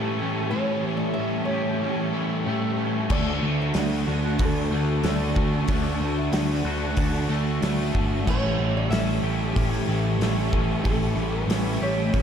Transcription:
Already playing: distorted electric guitar A2 E3 A3, clean electric guitar E3 A3 C#4 G4, overdriven electric guitar G3 C#4 G4 A4, analog synth pad G4 E5 A5 C#6
0.19 distorted electric guitar E3 A3, overdriven electric guitar G3 C#4 G4 A4
0.51 overdriven electric guitar A2 E3 G3 C#4 G4, distorted electric guitar A2 E3, nylon-string guitar C#5
0.55 distorted electric guitar A3, overdriven electric guitar A4
0.84 clean electric guitar E3, distorted electric guitar E3 A3, overdriven electric guitar G3 C#4 G4 A4
0.97 nylon-string guitar D5
1.14 distorted electric guitar A2, overdriven electric guitar G3 C#4, nylon-string guitar E5
1.18 distorted electric guitar E3 A3, overdriven electric guitar G4 A4
1.45 distorted electric guitar A3, overdriven electric guitar G4 A4, nylon-string guitar C#5
1.50 distorted electric guitar E3, overdriven electric guitar G3 C#4
1.80 overdriven electric guitar A2 E3 G3 C#4 G4 A4
2.12 clean electric guitar E3, overdriven electric guitar E3 G3 A3 C#4 G4 A4
2.16 overdriven electric guitar A2
2.45 distorted electric guitar A2 E3 A3, overdriven electric guitar G3 C#4 G4 A4, clean electric guitar A3
2.77 overdriven electric guitar G3 C#4 G4 A4, distorted electric guitar A3
2.81 distorted electric guitar E3
3.09 picked electric bass D2, overdriven electric guitar D3 A3 D4 F#4 A4, distorted electric guitar D3 A3, analog synth pad F#4 D5 A5, nylon-string guitar D5, kick, crash
3.13 distorted electric guitar D4
3.41 picked electric bass D2, clean electric guitar A3, distorted electric guitar D4, overdriven electric guitar D4 F#4 A4
3.46 distorted electric guitar A3
3.62 nylon-string guitar E5
3.74 picked electric bass D2, distorted electric guitar D3 A3, overdriven electric guitar A3 D4 F#4, snare, open hi-hat
3.78 distorted electric guitar D4, overdriven electric guitar A4, nylon-string guitar F#5
4.07 picked electric bass D2, distorted electric guitar A3 D4, overdriven electric guitar D4 F#4 A4
4.39 picked electric bass D2, overdriven electric guitar D3 A3 D4 F#4 A4, kick, open hi-hat
4.45 nylon-string guitar A4
4.71 picked electric bass D2, clean electric guitar A3, overdriven electric guitar A3 D4 F#4 A4
4.75 overdriven electric guitar D3 D4
5.03 picked electric bass D2, distorted electric guitar D3 A3, overdriven electric guitar A3 D4 F#4 A4, snare, open hi-hat
5.07 distorted electric guitar D4
5.35 picked electric bass D2, distorted electric guitar D4, overdriven electric guitar D4 F#4 A4, kick
5.40 distorted electric guitar A3
5.67 picked electric bass D2, overdriven electric guitar D3 A3 D4 F#4 A4, distorted electric guitar D3 A3 D4, nylon-string guitar D5, kick, open hi-hat
6.00 picked electric bass D2, clean electric guitar A3, distorted electric guitar A3 D4, overdriven electric guitar D4 F#4 A4
6.18 nylon-string guitar E5
6.32 picked electric bass D2, distorted electric guitar D3 A3 D4, overdriven electric guitar A3 D4 F#4 A4, nylon-string guitar F#5, snare, open hi-hat
6.64 picked electric bass D2, distorted electric guitar D4, overdriven electric guitar D4 F#4 A4
6.68 distorted electric guitar A3
6.96 picked electric bass D2, overdriven electric guitar D3 A3 D4 F#4 A4, nylon-string guitar A5, kick, open hi-hat
7.28 picked electric bass D2, clean electric guitar A3, overdriven electric guitar A3 D4 F#4 A4
7.33 overdriven electric guitar D3
7.60 picked electric bass D2, distorted electric guitar D3 A3, overdriven electric guitar A3 D4 F#4 A4, snare, open hi-hat
7.64 distorted electric guitar D4
7.92 picked electric bass G1, distorted electric guitar D4, overdriven electric guitar D4 F#4 A4, kick
7.97 distorted electric guitar A3
8.25 picked electric bass A1, overdriven electric guitar A2 E3 G3 C#4 E4 A4, distorted electric guitar A2 E3 A3, analog synth pad G4 E5 C#6, kick, crash
8.30 nylon-string guitar C#5
8.57 picked electric bass A1, clean electric guitar E3, overdriven electric guitar G3 C#4 E4 A4, distorted electric guitar A3
8.62 distorted electric guitar E3
8.77 nylon-string guitar D5
8.89 picked electric bass A1, distorted electric guitar A2 E3, overdriven electric guitar G3 C#4 E4, nylon-string guitar E5, snare, open hi-hat
8.94 distorted electric guitar A3, overdriven electric guitar A4
9.23 picked electric bass A1, distorted electric guitar E3 A3, overdriven electric guitar G3 C#4 E4 A4, clean electric guitar G4
9.54 picked electric bass A1, overdriven electric guitar A2 E3 G3, nylon-string guitar G4, kick, open hi-hat
9.58 overdriven electric guitar C#4 E4 A4
9.87 picked electric bass A1, overdriven electric guitar A2 E3 A3 E4 A4, clean electric guitar E3
9.91 overdriven electric guitar G3 C#4
10.19 picked electric bass A1, distorted electric guitar A2 E3 A3, overdriven electric guitar G3 C#4, clean electric guitar A3, snare, open hi-hat
10.23 overdriven electric guitar E4 A4
10.52 picked electric bass A1, distorted electric guitar E3 A3, overdriven electric guitar G3 C#4 E4 A4, kick
10.84 picked electric bass A1, distorted electric guitar A2 E3 A3, overdriven electric guitar A2 E3 G3 C#4 E4 A4, nylon-string guitar A4, analog synth pad B5, kick, open hi-hat
11.16 picked electric bass A1, clean electric guitar E3, distorted electric guitar E3 A3, overdriven electric guitar C#4 E4 A4
11.20 overdriven electric guitar G3
11.33 nylon-string guitar B4
11.47 picked electric bass A1, distorted electric guitar A2 E3 A3, overdriven electric guitar G3 C#4 E4 A4, snare, open hi-hat
11.80 picked electric bass A1, distorted electric guitar E3 A3, overdriven electric guitar G3 C#4 E4 A4, clean electric guitar G4, nylon-string guitar C#5
12.12 picked electric bass A1, overdriven electric guitar A2 E3 G3 C#4 E4 A4, kick, open hi-hat

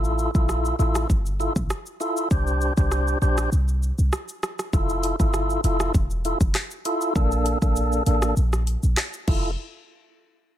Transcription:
Already playing: 808-style bass A1, tonewheel organ E4 F4 A4
0.04 shaker
0.19 shaker
0.35 808-style bass A#1, tonewheel organ E4 F4 A4, kick, shaker
0.49 cross-stick, shaker
0.65 shaker
0.79 808-style bass A1, tonewheel organ E4 F4 A4, shaker
0.95 cross-stick, shaker
1.10 808-style bass G1, kick, shaker
1.26 shaker
1.40 tonewheel organ E4 F4 A4, shaker
1.56 808-style bass A1, kick, shaker
1.70 cross-stick, shaker
1.86 shaker
2.00 tonewheel organ E4 F4 A4, shaker
2.17 shaker
2.31 808-style bass C2, tonewheel organ D4 G4 C5, kick, shaker
2.47 shaker
2.61 shaker
2.77 808-style bass C2, tonewheel organ D4 G4 C5, kick, shaker
2.92 cross-stick, shaker
3.08 shaker
3.22 808-style bass A#1, tonewheel organ D4 G4 C5, shaker
3.38 cross-stick, shaker
3.52 808-style bass C2, shaker
3.68 shaker
3.83 shaker
3.98 808-style bass C2, shaker
4.12 cross-stick, shaker
4.29 shaker
4.43 cross-stick, shaker
4.59 cross-stick, shaker
4.73 808-style bass F1, tonewheel organ E4 F4 A4, kick, shaker
4.89 shaker
5.03 closed hi-hat, shaker
5.20 808-style bass G1, tonewheel organ E4 F4 A4, kick, shaker
5.34 cross-stick, shaker
5.50 shaker
5.64 808-style bass F1, tonewheel organ E4 F4 A4, closed hi-hat, shaker
5.80 cross-stick, shaker
5.94 808-style bass E1, kick, shaker
6.11 shaker
6.25 tonewheel organ E4 F4 A4, closed hi-hat, shaker
6.41 808-style bass F1, kick, shaker
6.55 cross-stick, clap, shaker
6.71 shaker
6.85 tonewheel organ E4 F4 A4, closed hi-hat, shaker
7.01 shaker
7.16 808-style bass A#1, tonewheel organ A#3 D4 A4, kick, shaker
7.32 shaker
7.46 closed hi-hat, shaker
7.62 808-style bass A#1, tonewheel organ A#3 D4 A4, kick, shaker
7.76 shaker
7.92 shaker
8.06 808-style bass A1, tonewheel organ A#3 D4 A4, closed hi-hat, shaker
8.22 cross-stick, shaker
8.37 808-style bass A#1, shaker
8.53 cross-stick, shaker
8.67 closed hi-hat, shaker
8.83 808-style bass A#1, shaker
8.97 cross-stick, clap, shaker
9.13 shaker
9.27 808-style bass F1, tonewheel organ E4 F4 A4, kick, crash

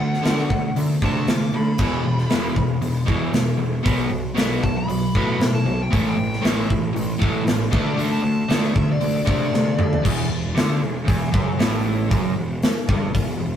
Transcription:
Already playing: overdriven electric guitar D3 A3, lead electric guitar F#5
0.00 picked electric bass D2
0.13 snare
0.23 picked electric bass D2, overdriven electric guitar D3 A3 D4, snare, open hi-hat
0.38 snare
0.49 picked electric bass D2, overdriven electric guitar D3 A3, kick
0.76 picked electric bass D2, overdriven electric guitar D3 A3, open hi-hat
1.02 picked electric bass C3, overdriven electric guitar D3 A3 D4, lead electric guitar A5, kick
1.27 picked electric bass C3, overdriven electric guitar D3 A3, lead electric guitar D6, snare, open hi-hat
1.54 picked electric bass D3, overdriven electric guitar D3 A3, lead electric guitar B5
1.78 picked electric bass E1, overdriven electric guitar E2 B2 E3, kick, crash
2.06 picked electric bass E1, overdriven electric guitar E2 B2
2.18 snare
2.30 picked electric bass E1, overdriven electric guitar E2 B2 E3, snare, open hi-hat
2.55 picked electric bass E1, overdriven electric guitar E2 B2, kick
2.81 picked electric bass E1, overdriven electric guitar E2 B2, open hi-hat
3.05 overdriven electric guitar E2 B2 E3, picked electric bass E2, kick
3.33 picked electric bass E1, overdriven electric guitar E2 B2, snare, open hi-hat
3.57 picked electric bass E1, overdriven electric guitar E2 B2
3.83 picked electric bass B1, overdriven electric guitar B2 F#3 B3, kick, open hi-hat
4.09 picked electric bass B1, overdriven electric guitar B2 F#3
4.34 picked electric bass B1, overdriven electric guitar B2 F#3 B3, snare, open hi-hat
4.63 picked electric bass B1, overdriven electric guitar B2 F#3, lead electric guitar A5, kick
4.78 lead electric guitar B5
4.88 picked electric bass B1, overdriven electric guitar B2 F#3, open hi-hat
5.15 picked electric bass A2, overdriven electric guitar B2 F#3 B3, kick
5.39 picked electric bass A2, overdriven electric guitar B2 F#3, snare, open hi-hat
5.54 lead electric guitar A5
5.65 picked electric bass B1, overdriven electric guitar B2 F#3
5.83 lead electric guitar G5
5.91 picked electric bass A1, overdriven electric guitar A2 E3 A3, kick, open hi-hat
5.95 lead electric guitar E5
6.09 lead electric guitar G5
6.16 picked electric bass A1, overdriven electric guitar A2 E3
6.33 snare
6.41 picked electric bass A1, overdriven electric guitar A2 E3 A3, snare, open hi-hat
6.46 lead electric guitar E5
6.69 picked electric bass A1, overdriven electric guitar A2 E3, kick
6.93 picked electric bass A1, overdriven electric guitar A2 E3, open hi-hat
7.18 overdriven electric guitar A2 E3 A3, picked electric bass A2, kick
7.44 picked electric bass A1, overdriven electric guitar A2 E3, open hi-hat
7.48 snare
7.71 picked electric bass D2, overdriven electric guitar D3 A3 D4, lead electric guitar B4, kick
7.86 lead electric guitar D5
7.95 picked electric bass D2, overdriven electric guitar D3 A3 D4, open hi-hat
7.99 lead electric guitar E5
8.12 lead electric guitar A5
8.23 picked electric bass D2, overdriven electric guitar D3 A3
8.48 picked electric bass D2, overdriven electric guitar D3 A3 D4, snare, open hi-hat
8.61 lead electric guitar E5, snare
8.74 picked electric bass D2, overdriven electric guitar D3 A3, kick
8.92 lead electric guitar D5
9.00 picked electric bass D2, overdriven electric guitar D3 A3, open hi-hat
9.17 lead electric guitar D5
9.25 picked electric bass C3, overdriven electric guitar D3 A3 D4, lead electric guitar D5, kick
9.52 picked electric bass C3, overdriven electric guitar D3 A3, snare
9.78 overdriven electric guitar D3 A3, picked electric bass D3, mid tom
9.93 floor tom
10.03 picked electric bass E1, overdriven electric guitar E2, kick, crash
10.29 picked electric bass E1, overdriven electric guitar E2
10.55 picked electric bass D2, overdriven electric guitar D3, snare, open hi-hat
10.81 picked electric bass E1, overdriven electric guitar E2
11.05 picked electric bass E1, overdriven electric guitar E2, kick, open hi-hat
11.32 picked electric bass F#1, overdriven electric guitar F#2, kick
11.59 picked electric bass A1, overdriven electric guitar A2, snare, open hi-hat
12.09 picked electric bass F#1, overdriven electric guitar F#2, kick, open hi-hat
12.36 picked electric bass E1, overdriven electric guitar E2
12.63 snare, open hi-hat
12.88 picked electric bass G1, overdriven electric guitar G2, kick
13.14 picked electric bass E1, overdriven electric guitar E2, kick, open hi-hat
13.40 picked electric bass E1, overdriven electric guitar E2

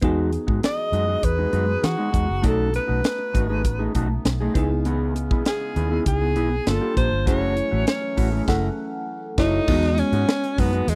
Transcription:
0.01 fingered electric bass E2, woodwind section E3 D#4 F#4 G#4, clean electric guitar G#3 D#4 F#4, fm electric piano B3 D#4 F#4 G#4, kick, closed hi-hat
0.32 muted clean electric guitar stroke, closed hi-hat
0.47 fingered electric bass G#2, clean electric guitar G#3 D#4 F#4, kick
0.63 alto saxophone D#5, snare, closed hi-hat
0.77 muted clean electric guitar stroke
0.92 fingered electric bass F#2, clean electric guitar G#3 D#4 F#4, closed hi-hat
1.08 clean electric guitar G#3 D#4 F#4
1.23 fingered electric bass E2, alto saxophone B4, muted clean electric guitar stroke, kick, closed hi-hat
1.38 clean electric guitar G#3 D#4 F#4
1.53 fingered electric bass F#2, clean electric guitar G#3 D#4 F#4, closed hi-hat
1.67 muted clean electric guitar stroke
1.82 fingered electric bass E3, alto saxophone F#4, muted clean electric guitar stroke, snare, closed hi-hat
1.97 clean electric guitar G#3 D#4 F#4
2.12 fingered electric bass E2, clean electric guitar G#3 D#4 F#4, kick, closed hi-hat
2.27 fingered electric bass F#1, muted clean electric guitar stroke
2.42 fingered electric bass B1, clean electric guitar A3 D#4 F#4, woodwind section A3 B3, fm electric piano C#4 D#4 F#4 A4, alto saxophone A4, kick, closed hi-hat
2.74 alto saxophone B4, closed hi-hat
2.87 fingered electric bass B1, clean electric guitar A3 D#4 F#4
3.03 muted clean electric guitar stroke, snare, closed hi-hat
3.18 muted clean electric guitar stroke
3.34 fingered electric bass G#1, clean electric guitar A3 D#4 F#4, kick, closed hi-hat
3.49 clean electric guitar A3 D#4 G#4
3.64 fingered electric bass A1, muted clean electric guitar stroke, kick, closed hi-hat
3.79 clean electric guitar A3 D#4 G#4
3.95 fingered electric bass B1, clean electric guitar A3 D#4 F#4, kick, closed hi-hat
4.10 muted clean electric guitar stroke
4.25 fingered electric bass B1, muted clean electric guitar stroke, snare, closed hi-hat
4.40 clean electric guitar A3 D#4 G#4
4.54 fingered electric bass C#2, woodwind section C#3 G#3 C#4, fm electric piano B3 D#4 E4 G#4, clean electric guitar B3 E4 G#4, kick, closed hi-hat
4.71 muted clean electric guitar stroke
4.85 clean electric guitar B3 E4 G#4, closed hi-hat
5.16 muted clean electric guitar stroke, closed hi-hat
5.31 fingered electric bass B1, clean electric guitar B3 E4 G#4, kick
5.45 alto saxophone G#4, muted clean electric guitar stroke, snare, closed hi-hat
5.61 muted clean electric guitar stroke
5.76 fingered electric bass D#2, clean electric guitar B3 E4 G#4, closed hi-hat
5.91 clean electric guitar B3 E4 G#4
6.06 fingered electric bass C#2, alto saxophone G#4, muted clean electric guitar stroke, kick, closed hi-hat
6.21 clean electric guitar B3 E4 G#4
6.36 fingered electric bass B1, clean electric guitar B3 E4 G#4, closed hi-hat
6.51 muted clean electric guitar stroke
6.66 fingered electric bass G1, woodwind section G3 A#3 D4 F4, fm electric piano A#3 D4 F4 A4, alto saxophone A4, muted clean electric guitar stroke, snare, closed hi-hat
6.81 clean electric guitar A#3 F4 G4
6.96 fingered electric bass A#1, clean electric guitar A#3 F4 G4, alto saxophone C5, kick, closed hi-hat
7.11 fingered electric bass G1, muted clean electric guitar stroke
7.26 fingered electric bass F#1, woodwind section E3 F#3 A3 C#4, fm electric piano A3 C#4 E4 G#4, clean electric guitar A3 E4 F#4, alto saxophone C#5, kick, closed hi-hat
7.57 closed hi-hat
7.71 fingered electric bass A1, clean electric guitar A3 E4 F#4
7.86 alto saxophone C#5, muted clean electric guitar stroke, snare, closed hi-hat
8.02 muted clean electric guitar stroke
8.17 fingered electric bass A1, clean electric guitar A3 E4 F#4, kick, open hi-hat
8.32 clean electric guitar A3 E4 G#4
8.47 fingered electric bass F#1, clean electric guitar A3 E4, fm electric piano A4 F#5, kick, snare, crash
9.38 fingered electric bass F#1, clean electric guitar A3 E4 F#4, alto saxophone D#4, fm electric piano E4 C#5, kick, snare, crash
9.67 fingered electric bass E2, clean electric guitar G#3 D#4 F#4, fm electric piano G#3 B3 D#4 F#4, kick, crash
9.83 snare, closed hi-hat
9.98 alto saxophone C#4, closed hi-hat
10.12 fingered electric bass G#2, clean electric guitar G#3 D#4 F#4, closed hi-hat
10.29 snare
10.43 muted clean electric guitar stroke, closed hi-hat
10.58 fingered electric bass F#2, clean electric guitar G#3 D#4 F#4, alto saxophone B3, kick, open hi-hat
10.73 clean electric guitar G#3 D#4 F#4, closed hi-hat
10.88 fingered electric bass E2, alto saxophone G#3, muted clean electric guitar stroke, closed hi-hat

